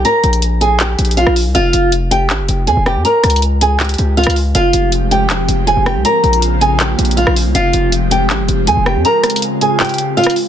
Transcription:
0.05 nylon-string guitar A#4 A#5, closed hi-hat
0.24 808-style bass A#1, closed hi-hat
0.33 closed hi-hat
0.42 closed hi-hat
0.61 nylon-string guitar G#4 G#5, closed hi-hat
0.80 nylon-string guitar G4 G5, clap, closed hi-hat
0.99 808-style bass A#1, closed hi-hat
1.05 closed hi-hat
1.11 closed hi-hat
1.17 nylon-string guitar F4 F5, closed hi-hat
1.27 808-style bass A#1, cross-stick
1.36 open hi-hat
1.46 808-style bass C2
1.55 808-style bass F1, nylon-string guitar F4 F5, closed hi-hat
1.73 808-style bass F1, closed hi-hat
1.92 closed hi-hat
2.11 nylon-string guitar G4 G5, closed hi-hat
2.30 808-style bass G#1, clap, closed hi-hat
2.39 808-style bass F1
2.49 808-style bass F1, closed hi-hat
2.67 808-style bass F2, nylon-string guitar G#4 G#5, closed hi-hat
2.77 808-style bass F1
2.86 nylon-string guitar G4 G5, cross-stick
2.96 808-style bass F2
3.05 nylon-string guitar A#4 A#5, closed hi-hat
3.24 808-style bass C#2, cross-stick, closed hi-hat
3.30 closed hi-hat
3.36 closed hi-hat
3.42 closed hi-hat
3.61 nylon-string guitar G#4 G#5, closed hi-hat
3.80 nylon-string guitar G4 G5, clap, closed hi-hat
3.85 closed hi-hat
3.89 closed hi-hat
3.94 closed hi-hat
3.98 808-style bass C#2, closed hi-hat
4.17 nylon-string guitar F4 F5, closed hi-hat
4.24 808-style bass C#2, cross-stick, closed hi-hat
4.30 closed hi-hat
4.36 open hi-hat
4.55 808-style bass F1, analog synth pad F3 G#3 C4 G4, nylon-string guitar F4 F5, closed hi-hat
4.73 808-style bass F1, closed hi-hat
4.92 closed hi-hat
5.11 nylon-string guitar G4 G5, closed hi-hat
5.30 808-style bass E1, clap, closed hi-hat
5.39 808-style bass F1
5.48 808-style bass F1, closed hi-hat
5.67 nylon-string guitar G#4 G#5, closed hi-hat
5.77 808-style bass F1
5.86 nylon-string guitar G4 G5, cross-stick
5.95 808-style bass C2
6.05 analog synth pad C#3 A#3 F4, nylon-string guitar A#4 A#5, closed hi-hat
6.24 808-style bass A#1, closed hi-hat
6.33 closed hi-hat
6.42 closed hi-hat
6.61 nylon-string guitar G#4 G#5, closed hi-hat
6.80 nylon-string guitar G4 G5, clap, closed hi-hat
6.99 808-style bass A#1, closed hi-hat
7.05 closed hi-hat
7.11 closed hi-hat
7.17 nylon-string guitar F4 F5, closed hi-hat
7.27 808-style bass A#1, cross-stick
7.36 open hi-hat
7.45 808-style bass C2
7.55 808-style bass F1, analog synth pad F3 G#3 C4 G4, nylon-string guitar F4 F5, closed hi-hat
7.73 808-style bass F1, closed hi-hat
7.92 closed hi-hat
8.11 nylon-string guitar G4 G5, closed hi-hat
8.30 808-style bass G#1, clap, closed hi-hat
8.39 808-style bass F1
8.48 808-style bass F1, closed hi-hat
8.67 808-style bass F2, nylon-string guitar G#4 G#5, closed hi-hat
8.77 808-style bass F1
8.86 nylon-string guitar G4 G5, cross-stick
8.96 808-style bass F2
9.05 analog synth pad C#3 F4, nylon-string guitar A#4 A#5, closed hi-hat
9.24 cross-stick, closed hi-hat
9.30 closed hi-hat
9.36 closed hi-hat
9.42 closed hi-hat
9.61 nylon-string guitar G#4 G#5, closed hi-hat
9.80 nylon-string guitar G4 G5, clap, closed hi-hat
9.85 closed hi-hat
9.89 closed hi-hat
9.94 closed hi-hat
9.98 closed hi-hat
10.17 nylon-string guitar F4 F5, closed hi-hat
10.24 cross-stick, closed hi-hat
10.30 closed hi-hat
10.36 open hi-hat

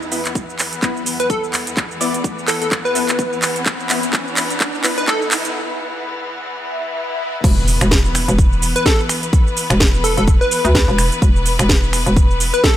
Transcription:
Already playing: string section E2 E3 B3, riser
0.02 shaker
0.12 synth stab B3 E4 B4, open hi-hat, shaker
0.25 clap, closed hi-hat, shaker
0.35 kick, closed hi-hat, shaker
0.49 shaker
0.59 clap, open hi-hat, shaker
0.73 closed hi-hat, shaker
0.82 synth stab B3 E4 B4, kick, clap, closed hi-hat, shaker
0.97 shaker
1.06 open hi-hat, shaker
1.20 digital synth lead B4, closed hi-hat, shaker
1.30 digital synth lead A4, kick, closed hi-hat, shaker
1.44 shaker
1.53 clap, open hi-hat, shaker
1.67 closed hi-hat, shaker
1.77 kick, clap, closed hi-hat, shaker
1.91 shaker
2.01 synth stab B3 E4 D5, open hi-hat, shaker
2.14 closed hi-hat, shaker
2.24 kick, closed hi-hat, shaker
2.38 shaker
2.48 digital synth lead A4, clap, open hi-hat, shaker
2.62 digital synth lead A4, closed hi-hat, shaker
2.71 kick, clap, closed hi-hat, shaker
2.85 digital synth lead B4, shaker
2.95 synth stab B3 E4 A4, open hi-hat, shaker
3.09 clap, closed hi-hat, shaker
3.19 kick, closed hi-hat, shaker
3.33 shaker
3.42 clap, open hi-hat, shaker
3.56 closed hi-hat, shaker
3.66 kick, clap, closed hi-hat, shaker
3.80 shaker
3.90 synth stab B3 E4 B4, clap, open hi-hat, shaker
4.03 closed hi-hat, shaker
4.13 kick, clap, closed hi-hat, shaker
4.27 shaker
4.37 clap, open hi-hat, shaker
4.50 closed hi-hat, shaker
4.60 kick, clap, closed hi-hat, shaker
4.75 shaker
4.84 synth stab B3 E4 B4, clap, open hi-hat, shaker
4.98 digital synth lead B4, closed hi-hat, shaker
5.08 digital synth lead A4, kick, clap, closed hi-hat, shaker
5.22 shaker
5.31 clap, open hi-hat, shaker
5.45 closed hi-hat, shaker
6.49 swell
7.44 fm bass E1, string section E3 B3 B4, kick, closed hi-hat, crash, impact, shaker
7.58 shaker
7.68 open hi-hat, shaker
7.81 fm bass E1, finger snap, closed hi-hat, shaker
7.91 kick, snare, closed hi-hat, shaker
8.05 shaker
8.15 finger snap, open hi-hat, shaker
8.28 fm bass E1, closed hi-hat, shaker
8.38 kick, closed hi-hat, shaker
8.53 shaker
8.62 open hi-hat, shaker
8.76 digital synth lead B4, closed hi-hat, shaker
8.86 digital synth lead A4, kick, snare, closed hi-hat, shaker
9.00 shaker
9.09 finger snap, open hi-hat, shaker
9.23 closed hi-hat, shaker
9.33 kick, closed hi-hat, shaker
9.47 shaker
9.57 open hi-hat, shaker
9.70 fm bass E1, finger snap, closed hi-hat, shaker
9.80 kick, snare, closed hi-hat, shaker
9.95 shaker
10.04 digital synth lead A4, open hi-hat, shaker
10.17 fm bass E1, digital synth lead A4, closed hi-hat, shaker
10.27 kick, closed hi-hat, shaker
10.41 digital synth lead B4, shaker
10.51 open hi-hat, shaker
10.65 fm bass D2, closed hi-hat, shaker
10.75 kick, snare, closed hi-hat, shaker
10.88 fm bass E1, shaker
10.98 finger snap, open hi-hat, shaker
11.12 closed hi-hat, shaker
11.22 fm bass E1, kick, closed hi-hat, shaker
11.36 shaker
11.46 open hi-hat, shaker
11.59 fm bass E1, finger snap, closed hi-hat, shaker
11.69 kick, snare, closed hi-hat, shaker
11.84 shaker
11.93 finger snap, open hi-hat, shaker
12.06 fm bass E1, closed hi-hat, shaker
12.16 kick, closed hi-hat, shaker
12.31 shaker
12.40 open hi-hat, shaker
12.54 digital synth lead B4, closed hi-hat, shaker
12.64 digital synth lead A4, kick, snare, closed hi-hat, shaker

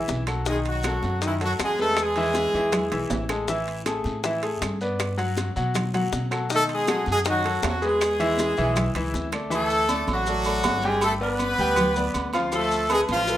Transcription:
Already playing: grand piano E3 E4 E5, horn section G#3 G#4
0.08 upright bass B1, high bongo, low bongo, high conga, short guiro, maracas
0.27 grand piano F#3 F#4 A4, high bongo, high conga, high timbale, short guiro, claves, maracas
0.46 grand piano D#3 D#4 D#5, horn section G#3 G#4, high bongo, high conga, long guiro, maracas
0.65 horn section F#3 F#4, high conga, high timbale, maracas
0.83 grand piano F#3 F#4 A4, high bongo, high conga, high timbale, short guiro, claves, maracas
1.02 upright bass F#2, high conga, short guiro, maracas
1.21 grand piano D#3 D#4 D#5, horn section E3 E4, high bongo, high timbale, long guiro, maracas
1.41 grand piano F#3 F#4 A4, horn section F#3 F#4, high conga, high timbale, maracas
1.58 upright bass E2, horn section G#3, high bongo, low bongo, high conga, high timbale, short guiro, claves, maracas
1.63 horn section G#4
1.78 grand piano G#3 G#4 B4, horn section A3 A4, high conga, short guiro, maracas
1.97 horn section G#3, high bongo, high conga, high timbale, long guiro, claves, maracas
2.01 horn section G#4
2.16 grand piano E3 E4 E5, high bongo, high conga, high timbale, maracas
2.34 high bongo, high conga, high timbale, short guiro, maracas
2.53 upright bass E2, grand piano E3 E4 E5, high conga, short guiro, maracas
2.72 high bongo, high conga, low conga, high timbale, long guiro, claves, maracas
2.91 upright bass B1, grand piano E3 E4 E5, high bongo, high conga, high timbale, maracas
3.10 upright bass A1, low bongo, high conga, low timbale, short guiro, maracas
3.29 grand piano G#3 G#4 A4, low bongo, high conga, high timbale, short guiro, claves, maracas
3.48 grand piano E3 E4 E5, high bongo, high conga, long guiro, maracas
3.67 high conga, high timbale, maracas
3.86 grand piano A3 G#4 A4, high bongo, high conga, high timbale, short guiro, claves, maracas
4.04 upright bass A2, high conga, short guiro, maracas
4.24 grand piano E3 E4 E5, high bongo, high conga, high timbale, long guiro, maracas
4.42 grand piano A3 G#4 A4, high conga, high timbale, maracas
4.61 upright bass G2, high bongo, low bongo, high conga, high timbale, short guiro, claves, maracas
4.81 grand piano B3 B4 D5, short guiro, maracas
4.99 high bongo, high conga, high timbale, long guiro, claves, maracas
5.18 grand piano F#3 F#4 F#5, high bongo, high conga, high timbale, maracas
5.37 high bongo, high conga, high timbale, short guiro, maracas
5.56 upright bass B2, grand piano F#3 F#4 F#5, high conga, short guiro, maracas
5.74 high bongo, high conga, low conga, high timbale, long guiro, claves, maracas
5.94 grand piano F#3 F#4 F#5, high bongo, high conga, low conga, high timbale, maracas
6.12 upright bass B2, high bongo, low bongo, high conga, short guiro, maracas
6.31 grand piano F#3 F#4 A4, high bongo, high conga, high timbale, short guiro, claves, maracas
6.50 grand piano D#3 D#4 D#5, horn section A3, high bongo, high conga, long guiro, maracas
6.55 horn section A4
6.69 horn section G#3, high conga, high timbale, maracas
6.73 horn section G#4
6.87 grand piano F#3 F#4 A4, high bongo, high conga, high timbale, short guiro, claves, maracas
7.06 upright bass F#2, horn section G#3, high conga, short guiro, maracas
7.10 horn section G#4
7.25 grand piano D#3 D#4 D#5, horn section F#4, high bongo, high conga, high timbale, long guiro, maracas
7.29 horn section F#3
7.44 grand piano F#3 F#4 A4, high conga, high timbale, maracas
7.62 upright bass E2, horn section F#3 F#4, high bongo, low bongo, high conga, high timbale, low timbale, short guiro, claves, maracas
7.82 grand piano G#3 G#4 B4, horn section G#4, short guiro, maracas
7.86 horn section G#3
8.01 high bongo, high conga, high timbale, long guiro, claves, maracas
8.20 grand piano E3 E4 E5, high bongo, high timbale, maracas
8.38 high bongo, high conga, high timbale, short guiro, maracas
8.57 upright bass B1, grand piano E3 E4 E5, short guiro, maracas
8.76 high bongo, high conga, low conga, high timbale, long guiro, claves, maracas
8.95 upright bass C#2, grand piano E3 E4 E5, high bongo, high conga, high timbale, maracas
9.14 upright bass D2, high bongo, high conga, short guiro, maracas
9.32 grand piano A3 A4 D5, low bongo, high conga, high timbale, short guiro, claves, maracas
9.50 grand piano E3 E4 E5, horn section A3 A4, cowbell, high conga, low agogo, long guiro, maracas
9.70 high conga, maracas
9.89 grand piano A3 A4 D5, cowbell, high conga, low agogo, short guiro, maracas
10.07 upright bass A1, horn section F#3, high conga, low agogo, short guiro, maracas
10.11 horn section F#4
10.26 grand piano A3 A4 D5, cowbell, high conga, long guiro, maracas
10.44 grand piano A3 A4 D5, high conga, low agogo, maracas
10.63 upright bass G1, cowbell, high conga, low timbale, low agogo, short guiro, maracas
10.82 grand piano G3 G4 G5, horn section G#3 G#4, cowbell, high conga, short guiro, maracas
11.01 horn section A3 A4, cowbell, high conga, low agogo, long guiro, maracas
11.21 grand piano B3 B4 D5, horn section B3 B4, high conga
11.38 cowbell, high conga, low agogo, short guiro, maracas
11.58 upright bass D2, grand piano G3 G4 G5, high conga, short guiro, maracas
11.76 cowbell, high conga, low conga, low agogo, long guiro, maracas
11.96 grand piano B3 B4 D5, high conga, low conga, maracas
12.14 upright bass D2, cowbell, high conga, low agogo, short guiro, maracas
12.33 grand piano F3 F4 F5, high conga, low agogo, short guiro, maracas
12.52 grand piano F3 F4 F5, horn section A3 A4, cowbell, high conga, low agogo, long guiro, maracas
12.71 high conga, maracas
12.89 horn section G#3 G#4, grand piano A3 A4 B4, cowbell, high conga, low agogo, short guiro, maracas
13.08 upright bass A1, horn section F3 F4, high conga, low agogo, short guiro, maracas
13.26 grand piano A3 A4 B4, cowbell, high conga, long guiro, maracas

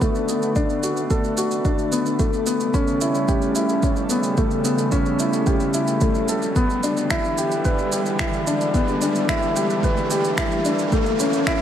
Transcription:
Already playing: double bass section B1, analog synth pad D3 A3 B3, upright piano B3 D4 F#4 A4, riser
0.01 upright piano A3, kick, shaker
0.15 shaker
0.29 upright piano B3, shaker
0.42 shaker
0.56 upright piano D4, kick, shaker
0.70 shaker
0.83 upright piano F#4, shaker
0.97 shaker
1.10 upright piano A4, kick, shaker
1.24 shaker
1.37 upright piano F#4, shaker
1.51 shaker
1.65 upright piano D4, kick, shaker
1.79 shaker
1.92 upright piano B3, shaker
2.06 shaker
2.19 double bass section B1, analog synth pad C#3 G3, upright piano A3, kick, shaker
2.33 shaker
2.46 upright piano B3, shaker
2.60 shaker
2.74 upright piano C#4, kick, shaker
2.88 shaker
3.01 upright piano E4, shaker
3.15 shaker
3.28 upright piano G4, kick, shaker
3.42 shaker
3.55 upright piano E4, shaker
3.69 shaker
3.83 upright piano C#4, kick, shaker
3.96 shaker
4.10 upright piano B3, shaker
4.23 shaker
4.37 upright piano A3, kick, shaker
4.51 shaker
4.65 upright piano B3, shaker
4.78 shaker
4.92 upright piano C#4, kick, shaker
5.06 shaker
5.19 upright piano E4, shaker
5.33 shaker
5.47 upright piano G4, kick, shaker
5.60 shaker
5.74 upright piano E4, shaker
5.87 shaker
6.01 upright piano A3, kick, shaker
6.15 shaker
6.28 upright piano A4, shaker
6.42 shaker
6.56 double bass section B1, analog synth pad D3 E3 G3, upright piano B3, kick, shaker
6.70 shaker
6.83 upright piano D4, shaker
6.97 shaker
7.11 upright piano E4, finger snap, kick, shaker
7.24 shaker
7.38 upright piano G4, shaker
7.51 shaker
7.65 upright piano B4, kick, shaker
7.79 shaker
7.92 upright piano G4, shaker
8.06 shaker
8.19 upright piano E4, finger snap, kick, shaker
8.33 shaker
8.47 upright piano D4, shaker
8.61 shaker
8.74 upright piano B3, kick, shaker
8.88 shaker
9.02 upright piano D4, shaker
9.15 shaker
9.29 upright piano E4, finger snap, kick, shaker
9.43 shaker
9.56 upright piano G4, shaker
9.70 shaker
9.83 upright piano B4, kick, shaker
9.97 shaker
10.11 upright piano G4, shaker
10.24 shaker
10.38 upright piano E4, finger snap, kick, shaker
10.52 shaker
10.65 upright piano D4, shaker
10.79 shaker
10.92 double bass section B1, analog synth pad F#3 A3, upright piano A3, kick, shaker
11.06 shaker
11.20 upright piano C#4, shaker
11.33 shaker
11.47 upright piano E4, finger snap, kick, shaker

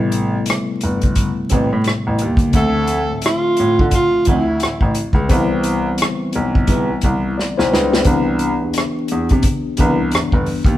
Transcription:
Already playing: grand piano A1, tine electric piano C3 G3 A3 B3 E4
0.12 closed hi-hat
0.46 closed hi-hat
0.50 cross-stick
0.81 grand piano G1, closed hi-hat
1.01 kick, closed hi-hat
1.15 kick, closed hi-hat
1.49 grand piano A1, clean electric guitar C4 G4 B4, kick, closed hi-hat
1.72 grand piano A2
1.84 cross-stick, closed hi-hat
2.07 grand piano A1
2.19 grand piano D#2, closed hi-hat
2.37 kick, closed hi-hat
2.52 grand piano D2, tine electric piano D3 F3 A3 C4, kick, closed hi-hat
2.56 tenor saxophone A4, tine electric piano E5
2.87 closed hi-hat
3.11 grand piano A2
3.21 closed hi-hat
3.26 tenor saxophone F4, cross-stick
3.57 grand piano A2, closed hi-hat
3.79 grand piano D3, kick
3.91 tenor saxophone F4, kick, closed hi-hat
4.25 grand piano D2, clean electric guitar F3 C4 E4, kick, closed hi-hat
4.29 tenor saxophone E4
4.60 grand piano A1, cross-stick, closed hi-hat
4.81 grand piano A1, kick
4.94 closed hi-hat
5.13 grand piano C#2, kick
5.29 grand piano C2, tine electric piano E3 G3 B3 C4, kick, closed hi-hat
5.33 tine electric piano E4
5.63 closed hi-hat
5.98 closed hi-hat
6.02 cross-stick
6.33 grand piano B1, closed hi-hat
6.55 kick
6.67 clean electric guitar G3 B3 E4, kick, closed hi-hat
7.01 grand piano C2, kick, closed hi-hat
7.38 tine electric piano D5, snare
7.58 grand piano B1, tine electric piano E4 C5, snare
7.72 grand piano C#2, tine electric piano D4 B4, snare
7.92 tine electric piano B3 G4, snare
8.04 grand piano C2, tine electric piano E3 B3 D4, kick, closed hi-hat
8.39 closed hi-hat
8.62 grand piano E2
8.73 closed hi-hat
8.78 cross-stick
9.08 grand piano E2, closed hi-hat
9.29 grand piano C3, kick, closed hi-hat
9.43 kick, closed hi-hat
9.77 grand piano C2, tine electric piano E3 B3 D4, clean electric guitar G3 B3 E4, kick, closed hi-hat
10.11 grand piano G1, cross-stick, closed hi-hat
10.32 grand piano G1, kick
10.46 open hi-hat
10.64 grand piano D#2, kick, closed hi-hat

